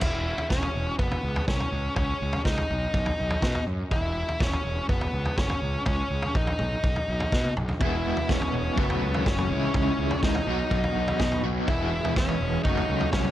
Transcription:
0.00 E1 E4, kick, floor tom, crash
0.38 floor tom
0.50 E1 C#4, kick, snare
0.63 floor tom
0.75 E1
0.99 F#1 B3, kick
1.11 floor tom
1.23 C#2
1.36 floor tom
1.48 C2 C#4, kick, snare, mid tom
1.60 floor tom
1.72 C#2
1.96 C#2 C#4, kick, floor tom
2.22 C#2
2.33 floor tom
2.45 C#2 D#4, kick, snare
2.57 floor tom
2.70 B1
2.94 B1, kick
3.06 floor tom
3.20 B1
3.30 floor tom
3.42 B2, kick, snare, mid tom
3.55 floor tom
3.67 F#2
3.91 E1 E4, kick, floor tom
4.29 floor tom
4.40 E1 C#4, kick, snare
4.53 floor tom
4.65 E1
4.89 F#1 B3, kick
5.01 floor tom
5.13 C#2
5.25 floor tom
5.37 F#1 C#4, kick, snare, mid tom
5.49 floor tom
5.62 C#2
5.86 C#2 C#4, kick, floor tom
6.10 C#2
6.22 floor tom
6.35 A#1 D#4, kick
6.47 floor tom
6.59 B1, mid tom
6.84 B1, kick
6.96 floor tom
7.08 B1
7.20 floor tom
7.32 B2, kick, snare
7.44 high tom
7.57 B1, mid tom
7.69 floor tom
7.80 E1 E2 B2 E3 G#3 B3 E4 G#4 B4 D#5 G#5, kick, floor tom
8.17 floor tom
8.29 E1 C#4, kick, snare
8.41 floor tom
8.53 E1
8.76 F#1 F#2 C#3 F#3 A3 B3 C#4 F#4 C#5 E5 A5, kick
8.90 floor tom
9.02 C#2
9.14 floor tom
9.26 F#1 C#4, kick, snare, mid tom
9.38 floor tom
9.49 C#2 C#3 E3 G#3 C#4 E4 D#5 G#5
9.74 C#2 C#4, kick, floor tom
9.98 C#2
10.11 floor tom
10.23 C#2 D#4, kick, snare
10.35 floor tom
10.46 B1 B2 F#3 B3 D#4 F#4 B5
10.50 F#4
10.71 B1, kick
10.84 floor tom
10.96 B1
11.08 floor tom
11.19 B2, kick, snare, mid tom
11.32 floor tom
11.44 B1 B2 F#3 B3 D#4 F#4
11.68 E1 E2 B2 E3 G#3 B3 E4 G#4 D#5 E5, kick, floor tom
12.05 floor tom
12.16 E1 C#4, kick, snare
12.29 floor tom
12.41 E1
12.63 F#1 F#2 C#3 F#3 A3 C#4 D#4 F#4 A4 C#5 F#5 C#6, kick
12.77 floor tom
12.89 C#2
13.01 floor tom
13.12 C2 C#4, kick, snare, mid tom
13.24 floor tom

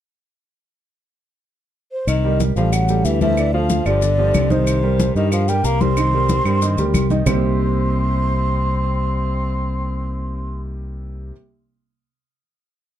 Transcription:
1.92 C5
2.07 C2 D#3 D#5, high conga, claves, maracas
2.24 G3 G4 A#4, high conga
2.40 high conga, maracas
2.56 A1 F3 G3 G4 A4 F5, maracas
2.73 F#3 F#5, high conga, claves, maracas
2.89 G3 G4 A4, high conga, maracas
3.04 D2 E3 E5, high conga, maracas
3.21 E3 F3 F4 A4 E5, high conga, maracas
3.37 D3 D4 D5, high conga, claves, maracas
3.54 F3 F4 A4 F5, high conga
3.70 high conga, maracas
3.85 G1 D3 F3 F4 G4 D5, high conga, claves, maracas
4.02 D3 D4 D5, high conga, maracas
4.18 F3 F4 G4, high conga
4.34 C2, high conga, claves, maracas
4.50 C3 D#3 D#4 C5 D#5, high conga, maracas
4.67 high conga, claves, maracas
4.83 G3 G4 A#4, high conga
5.00 high conga, maracas
5.15 G2 D#3 G3 G4 A#4 D#5, maracas
5.32 F3 F5, high conga, claves, maracas
5.48 G3 G4 A#4 G5, high conga, maracas
5.64 C2 A#3 A#5, high conga, maracas
5.81 G3 C4 G4 A#4 C6, high conga, maracas
5.97 D#3 D#4 D#5, claves, maracas
6.13 G3 G4 A#4, high conga
6.29 high conga, maracas
6.45 G2 G3 G4 A#4, high conga, claves, maracas
6.62 D#3 D#4 D#5, high conga, maracas
6.77 D2 G3 G4 A#4, high conga, maracas
6.94 C2, high conga, claves, maracas
7.10 D#3 D#4 D#5, high conga, maracas
7.26 C2 C3 G3 A#3 C4 D#4 G4 C6, low conga, claves, maracas

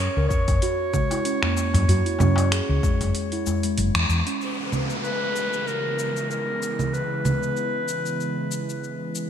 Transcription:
Already playing: C#5
0.00 cabasa
0.17 C#2 A#4
0.29 C#5, kick, darbuka dum, cabasa
0.48 F#1, kick, open hi-hat, darbuka ka, cabasa
0.62 F#4, open hi-hat, cabasa
0.94 G#3, kick, low conga, cabasa
1.11 E4, open hi-hat, darbuka ka, darbuka tek, cabasa
1.25 C#4, open hi-hat, cabasa
1.43 A#3, finger snap, darbuka ka, darbuka dum
1.56 darbuka ka, cabasa
1.74 F#2, open hi-hat, darbuka tek, darbuka dum, cabasa
1.88 F#2 F#4, open hi-hat, cabasa
2.06 E4, open hi-hat
2.19 F#2 C#4, darbuka tek, low conga, cabasa
2.36 open hi-hat, darbuka ka, darbuka tek, cabasa
2.52 G#4, finger snap, open hi-hat, cabasa
2.69 C#2
2.83 G#3, kick, darbuka dum, cabasa
3.01 F#1, open hi-hat, darbuka ka, cabasa
3.15 open hi-hat, cabasa
3.32 E4, open hi-hat
3.46 G#3, darbuka dum, cabasa
3.63 G#3, open hi-hat, cabasa
3.78 F#1, open hi-hat, cabasa
3.95 E2, finger snap, open hi-hat
4.09 E2, cabasa
4.27 C#4, open hi-hat, cabasa
4.40 C#3 E3 G#3 B3 E4, downlifter, cabasa
4.72 low conga, cabasa
4.90 cabasa
5.04 B4, cabasa
5.36 cabasa
5.53 cabasa
5.67 A#4, cabasa
5.99 cabasa
6.16 cabasa
6.31 A#4, cabasa
6.63 cabasa
6.79 low conga, cabasa
6.94 B4, cabasa
7.25 low conga, cabasa
7.43 cabasa
7.57 cabasa
7.88 cabasa
8.06 cabasa
8.20 cabasa
8.52 cabasa
8.69 cabasa
8.84 cabasa
9.15 cabasa

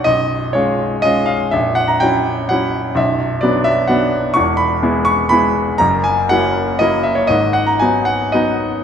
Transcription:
0.04 B0 B1 D#5
0.53 G#3 C#4 F4 C#5
1.02 G#3 C#4 F4 D#5
1.26 F5
1.51 A#0 A#1 E5
1.75 F#5
1.88 A#5
2.00 F#3 C#4 E4 G5
2.49 F#3 C#4 E4 F#5
2.95 B0 B1 E5
3.41 F#3 B3 D4 D5
3.64 E5
3.88 F#3 B3 D4 F#5
4.34 E1 E2 C#6
4.57 B5
4.82 G#3 B3 E4
5.05 C#6
5.29 G#3 B3 E4 B5
5.78 F#1 F#2 A#5
6.04 G#5
6.29 F#3 A#3 E4 F#5
6.79 F#3 A#3 E4 D#5
7.03 E5
7.15 C#5
7.27 G#1 G#2 D#5
7.53 F#5
7.67 A#5
7.79 F#3 B3 D#4 G#5
8.05 F#5
8.32 F#3 B3 D#4 D#5

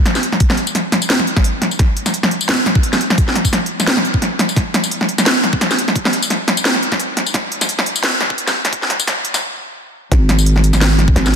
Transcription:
0.06 snare, closed hi-hat
0.15 snare, tambourine
0.23 closed hi-hat
0.32 snare
0.40 kick, closed hi-hat
0.50 snare
0.57 closed hi-hat
0.67 tambourine
0.75 snare, closed hi-hat
0.92 snare, closed hi-hat
1.02 tambourine
1.10 snare, closed hi-hat
1.19 snare
1.27 closed hi-hat
1.36 kick, snare
1.44 closed hi-hat
1.62 snare, closed hi-hat
1.71 tambourine
1.79 kick, snare, closed hi-hat
1.97 closed hi-hat
2.06 snare, tambourine
2.14 closed hi-hat
2.23 snare
2.31 closed hi-hat
2.41 tambourine
2.49 snare, closed hi-hat
2.66 snare, closed hi-hat
2.75 kick
2.83 closed hi-hat
2.93 snare, tambourine
3.01 closed hi-hat
3.10 snare
3.18 kick, closed hi-hat
3.28 snare
3.35 snare, closed hi-hat
3.45 kick, tambourine
3.53 snare, closed hi-hat
3.66 closed hi-hat
3.80 snare, tambourine
3.87 snare, closed hi-hat
3.97 snare
4.05 closed hi-hat
4.14 kick
4.22 snare, closed hi-hat
4.39 snare, closed hi-hat
4.49 tambourine
4.56 kick, snare, closed hi-hat
4.74 snare, closed hi-hat
4.84 tambourine
4.91 closed hi-hat
5.01 snare
5.09 closed hi-hat
5.18 snare, tambourine
5.26 snare, closed hi-hat
5.44 snare, closed hi-hat
5.53 kick
5.61 snare, closed hi-hat
5.71 snare, tambourine
5.79 closed hi-hat
5.88 snare
5.96 kick, closed hi-hat
6.05 snare
6.13 closed hi-hat
6.22 tambourine
6.30 snare, closed hi-hat
6.48 snare, closed hi-hat
6.57 tambourine
6.65 snare, closed hi-hat
6.75 snare
6.83 closed hi-hat
6.92 kick, snare
7.00 closed hi-hat
7.17 snare, closed hi-hat
7.26 tambourine
7.34 kick, snare, closed hi-hat
7.52 closed hi-hat
7.61 snare, tambourine
7.69 closed hi-hat
7.79 snare
7.86 closed hi-hat
7.96 tambourine
8.03 snare, closed hi-hat
8.21 snare
8.30 kick
8.38 closed hi-hat
8.47 snare, tambourine
8.65 snare, closed hi-hat
8.73 kick, closed hi-hat
8.82 snare
8.90 snare, closed hi-hat
9.00 kick, tambourine
9.07 snare, closed hi-hat
9.25 closed hi-hat
9.34 snare, tambourine
10.12 G#1, kick, snare, closed hi-hat
10.29 snare, closed hi-hat
10.39 tambourine
10.46 closed hi-hat
10.56 snare
10.64 closed hi-hat
10.73 snare, tambourine
10.81 snare, closed hi-hat
10.99 snare, closed hi-hat
11.08 kick
11.16 G#1, snare, closed hi-hat
11.26 snare, tambourine

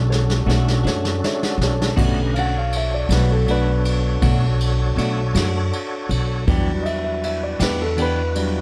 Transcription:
Already playing: B1 C#4 D4 F#4 A4
0.09 D4 A4 C#5, snare
0.30 snare
0.46 B1 B2 A3 D4 F#4 A4 C#5, snare
0.68 snare
0.83 F#2 A3 D4 F#4 A4 C#5, snare
1.05 snare
1.24 D4 A4 C#5 E5, snare
1.43 F#5, snare
1.58 B1, snare
1.62 D4 A4 C#5 A5
1.82 snare
1.96 B1 B2 D3 A3 D4 F#4 G4 B4 D#5 A#5, kick, crash
2.01 C#4
2.34 D4 F#4 A4 C#5 F5, ride
2.39 F#5
2.58 F5
2.73 ride
2.77 E5
2.94 D5
3.09 B1 A3 D4 F#4, snare, ride
3.14 B4
3.32 A4
3.46 B2 A3 D4 F#4, ride
3.50 D4 B4
3.85 ride
4.22 B1 B2 A3 D4 F#4, kick, ride
4.60 ride
4.96 B1 B2 A3 D4 F#4, ride
5.35 F#2 A3 D4 F#4, snare, ride
5.73 ride
6.09 B1, ride
6.47 E2 E3 F#3 G3 B3 D4 E4 F#4 G4 B4, kick, ride
6.82 D#5 E5, ride
7.04 E5
7.23 E5, ride
7.43 D5
7.59 E2 B3 D4 G4 B4, snare, ride
7.82 A4
7.97 E3 B3 D4 G4, ride
8.02 B4
8.35 F#3 G3 D4, ride

